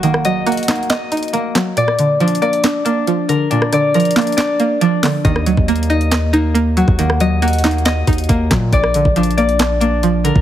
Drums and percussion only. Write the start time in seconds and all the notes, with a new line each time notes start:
0.03 closed hi-hat
0.14 cross-stick
0.25 closed hi-hat
0.47 closed hi-hat
0.52 closed hi-hat
0.57 closed hi-hat
0.63 closed hi-hat
0.68 snare, clap, closed hi-hat, open hi-hat
0.76 closed hi-hat
0.83 closed hi-hat
0.90 snare, clap, closed hi-hat
1.12 closed hi-hat
1.17 closed hi-hat
1.23 closed hi-hat
1.28 closed hi-hat
1.34 closed hi-hat
1.55 snare, clap, closed hi-hat
1.77 closed hi-hat
1.88 cross-stick
1.99 closed hi-hat
2.20 closed hi-hat
2.28 closed hi-hat
2.35 closed hi-hat
2.42 closed hi-hat
2.53 closed hi-hat
2.64 snare, clap, closed hi-hat
2.86 closed hi-hat
3.07 closed hi-hat
3.29 closed hi-hat
3.51 closed hi-hat
3.62 cross-stick
3.73 cross-stick, closed hi-hat
3.94 closed hi-hat
4.00 closed hi-hat
4.05 closed hi-hat
4.11 closed hi-hat
4.16 snare, clap, closed hi-hat
4.22 closed hi-hat
4.27 closed hi-hat
4.32 closed hi-hat
4.38 snare, clap, closed hi-hat
4.60 closed hi-hat
4.81 closed hi-hat
5.03 snare, clap, open hi-hat
5.25 kick, closed hi-hat
5.36 cross-stick
5.46 closed hi-hat
5.57 kick
5.68 closed hi-hat
5.76 closed hi-hat
5.83 closed hi-hat
5.90 closed hi-hat
6.01 closed hi-hat
6.12 snare, clap, closed hi-hat
6.33 closed hi-hat
6.55 closed hi-hat
6.77 closed hi-hat
6.88 kick
6.99 closed hi-hat
7.10 cross-stick
7.20 closed hi-hat
7.42 closed hi-hat
7.48 closed hi-hat
7.53 closed hi-hat
7.58 closed hi-hat
7.64 snare, clap, closed hi-hat, open hi-hat
7.71 closed hi-hat
7.78 closed hi-hat
7.85 snare, clap, closed hi-hat
8.07 kick, closed hi-hat
8.13 closed hi-hat
8.18 closed hi-hat
8.24 closed hi-hat
8.29 kick, closed hi-hat
8.51 kick, snare, clap, closed hi-hat
8.73 kick, closed hi-hat
8.84 cross-stick
8.94 closed hi-hat
9.05 kick
9.16 closed hi-hat
9.23 closed hi-hat
9.31 closed hi-hat
9.38 closed hi-hat
9.49 closed hi-hat
9.59 snare, clap, closed hi-hat
9.81 closed hi-hat
10.03 closed hi-hat
10.25 closed hi-hat
10.36 kick